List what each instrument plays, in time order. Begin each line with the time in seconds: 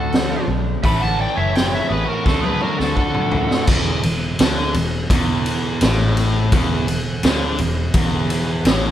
Already playing: picked electric bass D2, distorted electric guitar D3 A3 D4, lead electric guitar F#4 A4
0.12 snare, open hi-hat
0.48 picked electric bass B1
0.83 picked electric bass A1, distorted electric guitar A2 E3 A3, lead electric guitar E5 B5, kick, open hi-hat
1.01 lead electric guitar F#5 A5
1.20 lead electric guitar D5 G5
1.36 picked electric bass F#1, lead electric guitar C#5 E5
1.53 lead electric guitar C#5 G5, snare, open hi-hat
1.70 lead electric guitar C#5
1.75 lead electric guitar E5
1.89 picked electric bass A1, lead electric guitar G#4 B4
2.06 lead electric guitar F#4 A#4
2.25 picked electric bass D2, distorted electric guitar D3 A3, lead electric guitar F#4 A4, kick, snare
2.29 distorted electric guitar D4
2.42 lead electric guitar G#4 B4, high tom
2.61 lead electric guitar F#4 A#4, mid tom
2.79 picked electric bass D2, lead electric guitar F#4 A4, snare
2.96 lead electric guitar F#4 A4, kick
3.14 mid tom
3.31 picked electric bass D2, floor tom
3.51 snare
3.67 picked electric bass E1, distorted electric guitar E2, kick, crash
4.03 picked electric bass E1, distorted electric guitar E2, ride
4.39 picked electric bass D2, distorted electric guitar D3, snare, ride
4.74 picked electric bass E1, distorted electric guitar E2, ride
5.10 picked electric bass E1, distorted electric guitar E2, kick, ride
5.46 ride
5.81 picked electric bass A1, distorted electric guitar A2, snare, ride
6.17 ride
6.52 picked electric bass E1, distorted electric guitar E2, kick, ride
6.88 picked electric bass E1, distorted electric guitar E2, ride
7.23 picked electric bass D2, distorted electric guitar D3, snare, ride
7.58 picked electric bass E1, distorted electric guitar E2, ride
7.94 picked electric bass E1, distorted electric guitar E2, kick, ride
8.30 ride
8.65 picked electric bass A1, distorted electric guitar A2, snare, ride